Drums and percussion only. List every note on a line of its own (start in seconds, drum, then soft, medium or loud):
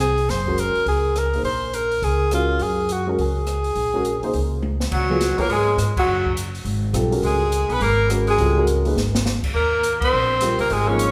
0.00 cross-stick medium
0.00 closed hi-hat soft
0.18 open hi-hat soft
0.29 snare soft
0.29 open hi-hat soft
0.47 kick soft
0.58 closed hi-hat soft
0.75 open hi-hat soft
0.86 open hi-hat soft
1.16 cross-stick medium
1.16 closed hi-hat soft
1.34 open hi-hat soft
1.45 open hi-hat soft
1.74 closed hi-hat soft
1.91 open hi-hat soft
2.03 open hi-hat soft
2.31 cross-stick medium
2.31 closed hi-hat soft
2.59 open hi-hat soft
2.89 closed hi-hat soft
3.19 open hi-hat soft
3.47 cross-stick medium
3.47 closed hi-hat soft
3.64 open hi-hat soft
3.76 open hi-hat soft
4.05 closed hi-hat soft
4.23 open hi-hat soft
4.33 open hi-hat soft
4.62 high tom soft
4.80 snare soft
4.92 kick medium
4.92 crash medium
5.21 snare soft
5.21 closed hi-hat medium
5.38 kick soft
5.38 open hi-hat soft
5.50 open hi-hat soft
5.78 cross-stick medium
5.78 closed hi-hat medium
5.97 kick medium
5.97 crash medium
6.26 kick soft
6.37 closed hi-hat medium
6.55 open hi-hat soft
6.65 open hi-hat soft
6.94 cross-stick medium
6.94 closed hi-hat medium
7.12 open hi-hat soft
7.23 open hi-hat soft
7.52 closed hi-hat medium
7.70 open hi-hat soft
7.81 open hi-hat soft
8.10 cross-stick medium
8.10 closed hi-hat medium
8.27 open hi-hat soft
8.38 open hi-hat soft
8.67 closed hi-hat medium
8.85 open hi-hat soft
8.97 snare soft
9.15 snare medium
9.26 snare medium
9.43 kick medium
9.43 crash medium
9.83 closed hi-hat medium
10.01 kick medium
10.01 crash medium
10.41 cross-stick medium
10.41 closed hi-hat medium
10.59 open hi-hat soft
10.70 open hi-hat soft
10.99 closed hi-hat medium